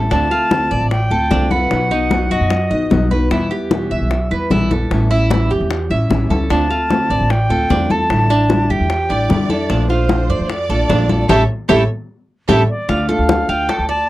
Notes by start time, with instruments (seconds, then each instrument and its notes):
Already playing: nylon-string guitar G3 C#4, cuban tres A4
0.10 upright bass D2, nylon-string guitar D3 A3 C4 F4, cuban tres D4, flute A5, high bongo, high conga
0.30 nylon-string guitar A3 C4 F4, cuban tres F4, high bongo, high conga
0.50 nylon-string guitar D3 A3 C4 F4, high bongo, high conga
0.71 upright bass A1, cuban tres D5, high bongo, high conga
0.81 upright bass A1
0.91 flute G5, muted nylon-string guitar stroke, high bongo, high conga
1.11 upright bass D2, nylon-string guitar A3 C4 F4, cuban tres A4, high bongo, high conga
1.30 upright bass C2, nylon-string guitar D3 A3 C4 F4, cuban tres D4, high bongo, low bongo, high conga
1.51 nylon-string guitar A3 C4 F4, cuban tres B4, flute F#5, high conga
1.71 upright bass B1, nylon-string guitar B2 F#3 B3 D#4 F#4, high bongo, high conga
1.91 nylon-string guitar B3 D#4 F#4, cuban tres D#4, high bongo, high conga
2.11 nylon-string guitar B2 F#3 B3 D#4 F#4, high bongo, high conga
2.30 upright bass F#2, cuban tres F#4, flute D#5, high bongo, high conga
2.41 upright bass F#2
2.50 muted nylon-string guitar stroke, high bongo, high conga
2.71 upright bass B1, nylon-string guitar B3 D#4 F#4, cuban tres D#5, high bongo, high conga
2.90 upright bass B1, nylon-string guitar B2 F#3 B3 D#4 F#4, high bongo, low bongo, high conga
3.11 nylon-string guitar B3 D#4 F#4, cuban tres B4, high conga
3.30 upright bass E2, nylon-string guitar B2 E3 G3 B3 E4, cuban tres E4, high bongo, high conga
3.51 nylon-string guitar G3 B3 E4, cuban tres G4, high bongo, high conga
3.70 nylon-string guitar B2 E3 G3 B3 E4, high bongo, high conga
3.91 upright bass B1, cuban tres E5, high bongo, high conga
4.01 upright bass B1
4.11 muted nylon-string guitar stroke, high bongo, high conga
4.31 upright bass E2, nylon-string guitar G3 B3 E4, cuban tres B4, high bongo, high conga
4.50 upright bass A#1, nylon-string guitar B2 E3 G3 B3 E4, cuban tres E4, high bongo, low bongo, high conga
4.70 nylon-string guitar G3 B3 E4, cuban tres A4, high conga
4.91 upright bass A1, nylon-string guitar E3 G3 C#4 E4, high bongo, high conga
5.10 nylon-string guitar G3 C#4 E4, cuban tres E4, high bongo, high conga
5.30 nylon-string guitar E3 G3 C#4 E4, high bongo, high conga
5.51 upright bass E2, cuban tres G4, high bongo, high conga
5.60 upright bass E2
5.70 muted nylon-string guitar stroke, high bongo, high conga
5.90 upright bass A1, nylon-string guitar G3 C#4 E4, cuban tres E5, high bongo, high conga
6.10 upright bass A1, nylon-string guitar E3 G3 C#4 E4, high bongo, low bongo, high conga
6.30 upright bass C#2, nylon-string guitar G3 C#4 E4, cuban tres A4, high conga
6.50 upright bass D2, nylon-string guitar D3 A3 C4 F4, cuban tres D4, flute A5, high bongo, high conga
6.69 nylon-string guitar A3 C4 F4, cuban tres F4, high bongo, high conga
6.89 nylon-string guitar D3 A3 C4 F4, high bongo, high conga
7.10 upright bass A1, cuban tres D5, high bongo, high conga
7.20 upright bass A1
7.30 flute G5, muted nylon-string guitar stroke, high bongo, high conga
7.49 upright bass D2, nylon-string guitar A3 C4 F4, cuban tres A4, high bongo, high conga
7.69 upright bass E2, nylon-string guitar D3 A3 C4 F4, cuban tres D4, high bongo, low bongo, high conga
7.90 nylon-string guitar A3 C4 F4, cuban tres A4, flute A5, high conga
8.09 upright bass A1, nylon-string guitar D3 G3 D4 E4, high bongo, high conga
8.29 nylon-string guitar G3 D4 E4, cuban tres D4, high bongo, high conga
8.49 nylon-string guitar D3 G3 D4 E4, high bongo, high conga
8.70 upright bass E2, cuban tres G4, flute G5, high bongo, high conga
8.80 upright bass E2
8.90 muted nylon-string guitar stroke, high bongo, high conga
9.09 upright bass A1, nylon-string guitar G3 D4 E4, violin section D5, cuban tres D5, high bongo, high conga
9.29 upright bass F2, nylon-string guitar D3 G3 D4 E4, high bongo, low bongo, high conga
9.49 nylon-string guitar G3 D4 E4, cuban tres A4, high conga
9.69 upright bass A#1, nylon-string guitar F3 A3 D4 F4, cuban tres D4, high bongo, high conga
9.89 nylon-string guitar A3 D4 F4, cuban tres F4, violin section C5, high bongo, high conga
10.09 nylon-string guitar F3 A3 D4 F4, high bongo, high conga
10.29 upright bass F2, cuban tres D5, high bongo, high conga
10.39 upright bass F2
10.50 violin section D5, muted nylon-string guitar stroke, high bongo, high conga
10.69 upright bass A#1, nylon-string guitar A3 D4 F4, cuban tres A4, high bongo, high conga
10.89 upright bass A#1, nylon-string guitar F3 A3 D4 F4, cuban tres D4, high bongo, low bongo, high conga
11.09 nylon-string guitar A3 D4 F4, cuban tres A4, high conga
11.29 upright bass A1, nylon-string guitar A3 C#4 E4, cuban tres E4 G4 A4, violin section A4 C#5 E5, low bongo, high conga
11.69 upright bass A1, nylon-string guitar A3 C#4 E4, cuban tres E4 G4 A4, violin section A4 C#5 E5, low bongo, high conga
12.49 upright bass A1, nylon-string guitar A3 C#4 E4, cuban tres E4 G4 A4, violin section A4 C#5 E5, low bongo, high conga
12.69 flute D5
12.88 upright bass D2, nylon-string guitar D3 A3 D4 F4, cuban tres F4, high bongo, high conga
13.09 nylon-string guitar A3 D4 F4, cuban tres A4, flute F5, high bongo, high conga
13.19 upright bass D2
13.29 high bongo, high conga
13.48 upright bass D2, cuban tres F4, flute G5, high bongo, high conga
13.69 cuban tres A4, muted nylon-string guitar stroke, high bongo, high conga
13.78 upright bass D2
13.89 cuban tres D5, flute A5, high bongo, high conga